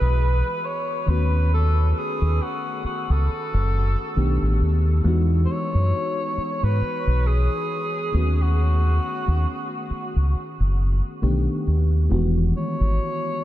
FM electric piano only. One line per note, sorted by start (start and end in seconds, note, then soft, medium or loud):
0.00 1.03 E3 medium
0.00 1.03 G#3 medium
0.00 1.04 B3 medium
0.00 1.05 F#4 medium
0.00 1.04 D#5 medium
1.06 4.12 D#3 medium
1.06 4.12 A3 medium
1.06 4.13 B3 medium
1.06 4.13 C#4 medium
1.10 4.14 F#4 medium
4.16 5.04 D#3 medium
4.16 5.05 A3 medium
4.16 5.04 B3 medium
4.16 5.05 D4 medium
4.16 5.06 G4 medium
5.03 8.09 E3 medium
5.03 8.09 G#3 medium
5.03 8.10 B3 medium
5.03 8.10 D#4 medium
5.07 8.11 F#4 medium
8.12 11.17 D#3 medium
8.12 11.18 A3 medium
8.12 11.19 B3 medium
8.12 11.19 C#4 medium
8.16 11.20 F#4 medium
11.22 11.29 D3 medium
11.22 12.10 A3 medium
11.22 12.10 B3 medium
11.22 12.11 D4 medium
11.22 12.11 G4 medium
11.28 12.11 D#3 medium
12.09 13.44 D#3 medium
12.09 13.44 E3 medium
12.09 13.44 G#3 medium
12.09 13.44 B3 medium
12.13 13.44 F#4 medium